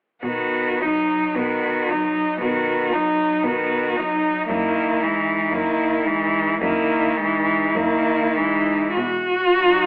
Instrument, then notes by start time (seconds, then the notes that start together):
cello
0.23 B2 D#3 B3 F#4
0.81 F#3 D#4
1.35 B2 D#3 B3 F#4
1.89 F#3 D#4
2.41 B2 D#3 B3 F#4
2.93 F#3 D#4
3.44 B2 D#3 B3 F#4
3.96 F#3 D#4
4.48 F#2 D#3 A#3 E4
5.00 E3 G#3 D#4
5.51 F#2 D#3 A#3 E4
6.05 E3 G#3 D#4
6.61 F#2 D#3 A#3 E4
7.16 E3 G#3 D#4
7.72 F#2 D#3 A#3 E4
8.33 E3 G#3 D#4
8.95 B2 F#4
9.59 F#3 D#4